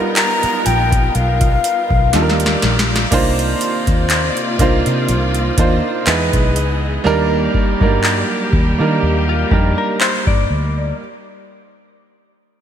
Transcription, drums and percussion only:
0.16 clap loud
0.16 closed hi-hat medium
0.43 closed hi-hat soft
0.66 closed hi-hat medium
0.92 kick medium
0.92 closed hi-hat soft
1.15 closed hi-hat medium
1.41 kick medium
1.41 closed hi-hat soft
1.64 closed hi-hat medium
1.91 kick medium
2.13 snare medium
2.13 closed hi-hat medium
2.30 snare medium
2.40 closed hi-hat medium
2.46 snare medium
2.62 snare medium
2.62 closed hi-hat soft
2.79 snare medium
2.79 closed hi-hat soft
2.96 snare medium
2.96 closed hi-hat medium
3.12 kick loud
3.12 closed hi-hat medium
3.12 crash medium
3.39 closed hi-hat soft
3.61 closed hi-hat medium
3.87 kick medium
3.87 closed hi-hat soft
4.10 clap loud
4.10 closed hi-hat medium
4.37 closed hi-hat soft
4.59 kick loud
4.59 closed hi-hat medium
4.86 closed hi-hat soft
5.09 closed hi-hat medium
5.34 closed hi-hat soft
5.58 kick medium
5.58 closed hi-hat medium
6.07 clap loud
6.07 closed hi-hat medium
6.33 kick medium
6.33 closed hi-hat medium
6.56 closed hi-hat medium
7.54 kick medium
7.81 kick medium
8.04 clap loud
8.53 kick medium
9.51 kick medium
10.01 clap loud
10.27 kick medium

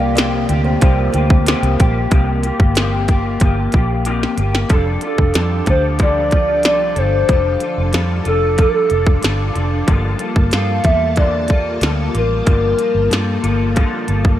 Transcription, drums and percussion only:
0.17 snare loud
0.17 closed hi-hat medium
0.49 closed hi-hat medium
0.81 kick loud
0.81 closed hi-hat medium
1.14 closed hi-hat medium
1.30 kick loud
1.46 snare loud
1.46 closed hi-hat medium
1.63 closed hi-hat medium
1.80 kick medium
1.80 closed hi-hat medium
2.11 kick loud
2.11 closed hi-hat medium
2.43 closed hi-hat medium
2.60 kick medium
2.75 snare loud
2.75 closed hi-hat medium
3.08 kick medium
3.08 closed hi-hat medium
3.40 kick medium
3.40 closed hi-hat medium
3.72 kick medium
3.72 closed hi-hat medium
4.05 closed hi-hat medium
4.23 snare medium
4.38 closed hi-hat medium
4.55 snare medium
4.70 kick loud
4.70 closed hi-hat medium
5.01 closed hi-hat medium
5.18 kick medium
5.34 snare loud
5.34 closed hi-hat medium
5.66 kick medium
5.66 closed hi-hat medium
5.99 kick medium
5.99 closed hi-hat medium
6.31 kick medium
6.31 closed hi-hat medium
6.63 snare loud
6.63 closed hi-hat medium
6.96 closed hi-hat medium
7.29 kick loud
7.29 closed hi-hat medium
7.60 closed hi-hat medium
7.93 snare loud
7.93 closed hi-hat medium
8.25 closed hi-hat medium
8.58 kick medium
8.58 closed hi-hat medium
8.90 closed hi-hat medium
9.07 kick loud
9.23 snare loud
9.23 closed hi-hat medium
9.56 closed hi-hat medium
9.88 kick loud
9.88 closed hi-hat medium
10.19 closed hi-hat medium
10.36 kick medium
10.51 snare loud
10.51 closed hi-hat medium
10.84 kick medium
10.84 closed hi-hat medium
11.16 kick medium
11.16 closed hi-hat medium
11.48 kick medium
11.48 closed hi-hat medium
11.81 snare loud
11.81 closed hi-hat medium
12.15 closed hi-hat medium
12.47 kick loud
12.47 closed hi-hat medium
12.79 closed hi-hat medium
13.11 snare loud
13.11 closed hi-hat medium
13.44 closed hi-hat medium
13.76 kick medium
13.76 closed hi-hat medium
14.08 closed hi-hat medium
14.25 kick medium

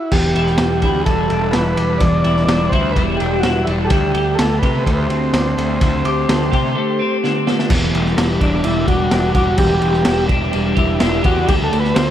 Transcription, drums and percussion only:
0.12 kick loud
0.12 crash loud
0.36 ride medium
0.47 snare soft
0.58 snare loud
0.58 ride loud
0.82 kick medium
0.82 ride medium
1.06 kick medium
1.06 ride medium
1.30 ride medium
1.53 snare medium
1.53 ride medium
1.77 ride medium
2.00 kick loud
2.00 ride medium
2.24 ride medium
2.37 snare soft
2.49 snare loud
2.49 ride medium
2.72 kick medium
2.72 ride medium
2.96 kick medium
2.96 ride medium
3.20 ride medium
3.43 snare loud
3.43 ride medium
3.67 ride medium
3.90 kick loud
3.90 ride loud
4.15 ride medium
4.39 snare loud
4.39 ride loud
4.63 kick medium
4.63 ride medium
4.86 kick medium
4.86 ride medium
5.10 ride medium
5.34 snare loud
5.34 ride medium
5.58 ride medium
5.81 kick loud
5.81 ride loud
6.05 ride medium
6.29 snare loud
6.29 ride loud
6.53 kick medium
6.53 ride medium
7.24 snare medium
7.47 snare medium
7.59 snare medium
7.70 kick loud
7.70 crash loud
7.70 crash medium
7.95 crash medium
8.06 snare soft
8.18 snare loud
8.18 crash medium
8.41 kick medium
8.41 crash medium
8.64 crash medium
8.88 kick medium
8.88 crash medium
9.11 snare loud
9.11 crash medium
9.35 kick loud
9.35 crash medium
9.58 kick loud
9.58 crash medium
9.82 crash medium
9.94 snare soft
10.05 snare loud
10.05 crash medium
10.29 kick medium
10.29 crash medium
10.53 crash medium
10.77 kick medium
10.77 crash medium
11.00 snare loud
11.00 crash medium
11.24 kick loud
11.24 crash medium
11.48 kick loud
11.48 crash medium
11.73 crash medium
11.84 snare soft
11.96 snare loud
11.96 crash medium

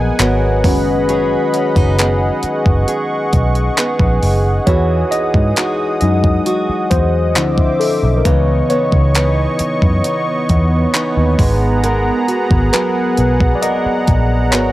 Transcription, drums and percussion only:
0.19 clap loud
0.19 closed hi-hat medium
0.64 kick loud
0.64 open hi-hat medium
1.09 closed hi-hat medium
1.54 closed hi-hat medium
1.76 kick medium
1.99 clap loud
1.99 closed hi-hat medium
2.43 closed hi-hat medium
2.66 kick medium
2.88 closed hi-hat medium
3.33 kick medium
3.33 closed hi-hat soft
3.55 closed hi-hat soft
3.77 clap loud
3.77 closed hi-hat medium
3.99 kick medium
4.23 open hi-hat medium
4.67 kick loud
4.67 closed hi-hat medium
5.12 closed hi-hat medium
5.34 kick medium
5.56 clap loud
5.56 closed hi-hat medium
6.01 closed hi-hat medium
6.24 kick medium
6.46 closed hi-hat medium
6.91 kick medium
6.91 closed hi-hat medium
7.35 clap loud
7.35 closed hi-hat medium
7.58 kick medium
7.81 open hi-hat medium
8.25 kick loud
8.25 closed hi-hat medium
8.70 closed hi-hat medium
8.92 kick medium
9.15 clap loud
9.15 closed hi-hat medium
9.59 closed hi-hat medium
9.82 kick medium
10.04 closed hi-hat medium
10.49 kick medium
10.49 closed hi-hat medium
10.94 clap loud
10.94 closed hi-hat medium
11.39 kick loud
11.39 open hi-hat medium
11.84 closed hi-hat medium
12.28 closed hi-hat medium
12.51 kick loud
12.73 clap loud
12.73 closed hi-hat medium
13.17 closed hi-hat medium
13.40 kick medium
13.63 closed hi-hat medium
14.07 kick medium
14.07 closed hi-hat medium
14.52 clap loud
14.52 closed hi-hat medium

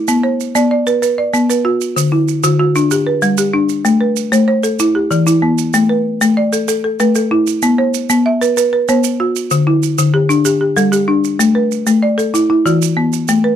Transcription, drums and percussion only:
0.08 maracas medium
0.40 maracas soft
0.55 maracas medium
0.87 maracas soft
1.03 maracas medium
1.34 maracas soft
1.50 maracas medium
1.81 maracas medium
1.97 maracas medium
2.28 maracas medium
2.43 maracas medium
2.76 maracas medium
2.91 maracas medium
3.22 maracas soft
3.38 maracas medium
3.69 maracas medium
3.85 maracas medium
4.16 maracas medium
4.33 maracas medium
4.64 maracas medium
4.79 maracas medium
5.11 maracas soft
5.27 maracas medium
5.58 maracas medium
5.74 maracas medium
6.21 maracas medium
6.53 maracas medium
6.68 maracas medium
7.00 maracas medium
7.15 maracas medium
7.47 maracas medium
7.62 maracas medium
7.94 maracas medium
8.10 maracas medium
8.42 maracas medium
8.57 maracas medium
8.89 maracas medium
9.04 maracas medium
9.36 maracas medium
9.51 maracas medium
9.83 maracas medium
9.98 maracas medium
10.30 maracas medium
10.45 maracas medium
10.77 maracas medium
10.93 maracas medium
11.24 maracas medium
11.40 maracas medium
11.71 maracas medium
11.87 maracas medium
12.19 maracas medium
12.35 maracas medium
12.66 maracas medium
12.82 maracas medium
13.13 maracas medium
13.28 maracas medium

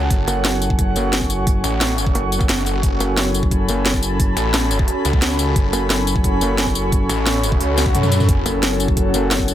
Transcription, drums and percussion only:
0.11 kick loud
0.11 closed hi-hat loud
0.28 closed hi-hat medium
0.28 tambourine medium
0.45 snare loud
0.45 closed hi-hat loud
0.62 closed hi-hat medium
0.62 tambourine medium
0.70 kick loud
0.79 kick loud
0.79 closed hi-hat loud
0.96 closed hi-hat medium
0.96 tambourine medium
1.13 snare loud
1.13 closed hi-hat loud
1.21 kick medium
1.21 tambourine soft
1.30 closed hi-hat medium
1.30 tambourine medium
1.47 kick loud
1.47 closed hi-hat medium
1.64 closed hi-hat medium
1.64 tambourine medium
1.81 snare loud
1.81 closed hi-hat medium
1.98 closed hi-hat medium
1.98 tambourine medium
2.07 kick loud
2.15 closed hi-hat medium
2.32 closed hi-hat medium
2.32 tambourine medium
2.41 kick loud
2.41 tambourine soft
2.49 snare loud
2.49 closed hi-hat loud
2.58 tambourine soft
2.66 closed hi-hat medium
2.66 tambourine medium
2.83 kick loud
2.83 closed hi-hat medium
3.00 closed hi-hat medium
3.00 tambourine medium
3.17 snare loud
3.17 closed hi-hat medium
3.34 closed hi-hat medium
3.34 tambourine medium
3.43 kick loud
3.51 kick loud
3.51 closed hi-hat medium
3.68 closed hi-hat medium
3.68 tambourine medium
3.86 snare loud
3.86 closed hi-hat medium
3.94 kick medium
3.94 tambourine soft
4.03 closed hi-hat medium
4.03 tambourine medium
4.20 kick loud
4.20 closed hi-hat medium
4.37 closed hi-hat medium
4.37 tambourine medium
4.54 snare loud
4.54 closed hi-hat medium
4.71 closed hi-hat medium
4.71 tambourine medium
4.79 kick loud
4.88 closed hi-hat medium
5.05 closed hi-hat medium
5.05 tambourine medium
5.13 kick loud
5.22 snare loud
5.22 closed hi-hat medium
5.30 tambourine soft
5.39 closed hi-hat medium
5.39 tambourine medium
5.56 kick loud
5.56 closed hi-hat medium
5.73 closed hi-hat medium
5.73 tambourine medium
5.90 snare loud
5.90 closed hi-hat medium
6.07 closed hi-hat medium
6.07 tambourine medium
6.16 kick loud
6.24 kick loud
6.24 closed hi-hat medium
6.41 closed hi-hat medium
6.41 tambourine medium
6.58 snare loud
6.58 closed hi-hat medium
6.67 kick medium
6.67 tambourine soft
6.75 closed hi-hat medium
6.75 tambourine medium
6.92 kick loud
6.92 closed hi-hat loud
7.09 closed hi-hat medium
7.09 tambourine medium
7.26 snare loud
7.26 closed hi-hat loud
7.43 closed hi-hat medium
7.43 tambourine medium
7.52 kick loud
7.61 closed hi-hat medium
7.78 snare medium
7.78 closed hi-hat medium
7.78 tambourine medium
7.86 kick loud
7.95 closed hi-hat loud
7.95 mid tom medium
8.03 mid tom medium
8.03 tambourine soft
8.12 closed hi-hat medium
8.12 tambourine medium
8.20 mid tom medium
8.20 tambourine soft
8.29 kick loud
8.29 closed hi-hat loud
8.46 closed hi-hat medium
8.46 tambourine medium
8.63 snare loud
8.63 closed hi-hat loud
8.80 closed hi-hat medium
8.80 tambourine medium
8.88 kick loud
8.97 kick loud
8.97 closed hi-hat loud
9.14 closed hi-hat medium
9.14 tambourine medium
9.31 snare loud
9.31 closed hi-hat loud
9.39 kick medium
9.39 tambourine soft
9.48 closed hi-hat medium
9.48 tambourine medium

